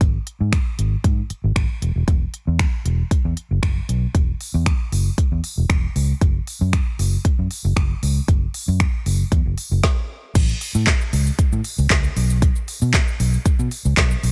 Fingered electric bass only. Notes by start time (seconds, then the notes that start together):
0.01 G#1
0.40 G#2
0.78 G#1
1.04 G#2
1.30 muted fingered electric bass stroke
1.44 G#1
1.56 G#1
1.82 E1
1.96 E1
2.08 E1
2.47 E2
2.85 E1
3.11 muted fingered electric bass stroke
3.25 E2
3.51 F#1
3.63 F#1
3.89 B1
4.15 E1
4.54 E2
4.92 F#1
5.18 muted fingered electric bass stroke
5.32 E2
5.58 E1
5.70 E1
5.96 C#2
6.21 F#1
6.61 F#2
6.99 F#1
7.25 muted fingered electric bass stroke
7.39 F#2
7.65 F#1
7.76 F#1
8.03 C#2
8.28 F#1
8.68 F#2
9.06 F#1
9.32 E2
9.46 F#1
9.71 F#1
10.35 A1
10.75 A2
11.13 C#2
11.39 muted fingered electric bass stroke
11.52 A2
11.78 C#2
12.16 B1
12.82 B2
13.20 B1
13.46 muted fingered electric bass stroke
13.59 B2
13.85 C#2
13.97 B1
14.23 B1